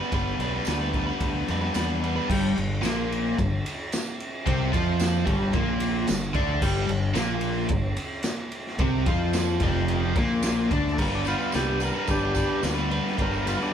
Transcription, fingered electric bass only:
0, 0, Header, 1, 2, 480
1, 0, Start_track
1, 0, Tempo, 542495
1, 104, Time_signature, 4, 2, 24, 8
1, 7784, Tempo, 548446
1, 12104, End_track
2, 0, Start_track
2, 0, Title_t, "Fingered electric bass"
2, 0, Program_c, 0, 33
2, 106, Note_on_c, 0, 31, 95
2, 292, Note_off_c, 0, 31, 0
2, 342, Note_on_c, 0, 35, 95
2, 530, Note_off_c, 0, 35, 0
2, 594, Note_on_c, 0, 38, 97
2, 964, Note_off_c, 0, 38, 0
2, 1067, Note_on_c, 0, 38, 81
2, 1253, Note_off_c, 0, 38, 0
2, 1315, Note_on_c, 0, 41, 93
2, 1498, Note_off_c, 0, 41, 0
2, 1546, Note_on_c, 0, 40, 86
2, 1919, Note_off_c, 0, 40, 0
2, 2025, Note_on_c, 0, 31, 100
2, 2249, Note_off_c, 0, 31, 0
2, 2271, Note_on_c, 0, 31, 95
2, 2492, Note_off_c, 0, 31, 0
2, 2498, Note_on_c, 0, 34, 90
2, 2948, Note_off_c, 0, 34, 0
2, 2995, Note_on_c, 0, 31, 75
2, 3214, Note_off_c, 0, 31, 0
2, 3957, Note_on_c, 0, 36, 100
2, 4174, Note_off_c, 0, 36, 0
2, 4186, Note_on_c, 0, 41, 110
2, 4631, Note_off_c, 0, 41, 0
2, 4654, Note_on_c, 0, 31, 112
2, 4882, Note_off_c, 0, 31, 0
2, 4897, Note_on_c, 0, 34, 101
2, 5346, Note_off_c, 0, 34, 0
2, 5387, Note_on_c, 0, 31, 87
2, 5608, Note_off_c, 0, 31, 0
2, 5616, Note_on_c, 0, 38, 104
2, 5843, Note_off_c, 0, 38, 0
2, 5854, Note_on_c, 0, 31, 98
2, 6082, Note_off_c, 0, 31, 0
2, 6098, Note_on_c, 0, 31, 94
2, 6318, Note_off_c, 0, 31, 0
2, 6323, Note_on_c, 0, 34, 108
2, 6779, Note_off_c, 0, 34, 0
2, 6809, Note_on_c, 0, 31, 82
2, 7039, Note_off_c, 0, 31, 0
2, 7770, Note_on_c, 0, 36, 87
2, 7999, Note_off_c, 0, 36, 0
2, 8016, Note_on_c, 0, 41, 104
2, 8464, Note_off_c, 0, 41, 0
2, 8488, Note_on_c, 0, 29, 111
2, 8939, Note_off_c, 0, 29, 0
2, 8977, Note_on_c, 0, 34, 96
2, 9423, Note_off_c, 0, 34, 0
2, 9459, Note_on_c, 0, 38, 99
2, 9682, Note_off_c, 0, 38, 0
2, 9698, Note_on_c, 0, 31, 84
2, 10006, Note_off_c, 0, 31, 0
2, 10188, Note_on_c, 0, 36, 89
2, 10493, Note_off_c, 0, 36, 0
2, 10661, Note_on_c, 0, 31, 98
2, 10969, Note_off_c, 0, 31, 0
2, 11136, Note_on_c, 0, 38, 89
2, 11446, Note_off_c, 0, 38, 0
2, 11625, Note_on_c, 0, 31, 98
2, 11934, Note_off_c, 0, 31, 0
2, 12104, End_track
0, 0, End_of_file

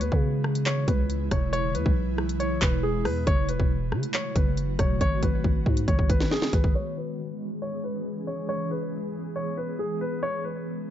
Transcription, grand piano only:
0, 0, Header, 1, 2, 480
1, 0, Start_track
1, 0, Key_signature, 4, "minor"
1, 0, Tempo, 434783
1, 1690, Time_signature, 4, 2, 24, 8
1, 12037, End_track
2, 0, Start_track
2, 0, Title_t, "Grand piano"
2, 0, Program_c, 0, 0
2, 10, Note_on_c, 0, 71, 78
2, 687, Note_off_c, 0, 71, 0
2, 729, Note_on_c, 0, 73, 89
2, 944, Note_off_c, 0, 73, 0
2, 969, Note_on_c, 0, 71, 77
2, 1421, Note_off_c, 0, 71, 0
2, 1450, Note_on_c, 0, 73, 80
2, 1664, Note_off_c, 0, 73, 0
2, 1687, Note_on_c, 0, 73, 112
2, 1902, Note_off_c, 0, 73, 0
2, 1927, Note_on_c, 0, 71, 84
2, 2605, Note_off_c, 0, 71, 0
2, 2648, Note_on_c, 0, 73, 93
2, 2863, Note_off_c, 0, 73, 0
2, 2886, Note_on_c, 0, 71, 85
2, 3102, Note_off_c, 0, 71, 0
2, 3126, Note_on_c, 0, 68, 90
2, 3342, Note_off_c, 0, 68, 0
2, 3367, Note_on_c, 0, 71, 88
2, 3583, Note_off_c, 0, 71, 0
2, 3610, Note_on_c, 0, 73, 115
2, 3824, Note_off_c, 0, 73, 0
2, 3849, Note_on_c, 0, 71, 82
2, 4527, Note_off_c, 0, 71, 0
2, 4572, Note_on_c, 0, 73, 83
2, 4785, Note_off_c, 0, 73, 0
2, 4811, Note_on_c, 0, 71, 75
2, 5262, Note_off_c, 0, 71, 0
2, 5290, Note_on_c, 0, 73, 81
2, 5504, Note_off_c, 0, 73, 0
2, 5532, Note_on_c, 0, 73, 106
2, 5745, Note_off_c, 0, 73, 0
2, 5774, Note_on_c, 0, 71, 85
2, 6449, Note_off_c, 0, 71, 0
2, 6489, Note_on_c, 0, 73, 85
2, 6704, Note_off_c, 0, 73, 0
2, 6729, Note_on_c, 0, 71, 85
2, 6944, Note_off_c, 0, 71, 0
2, 6972, Note_on_c, 0, 68, 88
2, 7185, Note_off_c, 0, 68, 0
2, 7212, Note_on_c, 0, 71, 80
2, 7425, Note_off_c, 0, 71, 0
2, 7455, Note_on_c, 0, 73, 98
2, 7667, Note_off_c, 0, 73, 0
2, 7695, Note_on_c, 0, 71, 74
2, 8369, Note_off_c, 0, 71, 0
2, 8412, Note_on_c, 0, 73, 84
2, 8625, Note_off_c, 0, 73, 0
2, 8652, Note_on_c, 0, 71, 69
2, 9102, Note_off_c, 0, 71, 0
2, 9133, Note_on_c, 0, 73, 77
2, 9346, Note_off_c, 0, 73, 0
2, 9371, Note_on_c, 0, 73, 107
2, 9585, Note_off_c, 0, 73, 0
2, 9614, Note_on_c, 0, 71, 80
2, 10289, Note_off_c, 0, 71, 0
2, 10330, Note_on_c, 0, 73, 89
2, 10544, Note_off_c, 0, 73, 0
2, 10569, Note_on_c, 0, 71, 77
2, 10783, Note_off_c, 0, 71, 0
2, 10809, Note_on_c, 0, 68, 83
2, 11023, Note_off_c, 0, 68, 0
2, 11052, Note_on_c, 0, 71, 85
2, 11266, Note_off_c, 0, 71, 0
2, 11290, Note_on_c, 0, 73, 109
2, 11504, Note_off_c, 0, 73, 0
2, 11530, Note_on_c, 0, 71, 76
2, 12037, Note_off_c, 0, 71, 0
2, 12037, End_track
0, 0, End_of_file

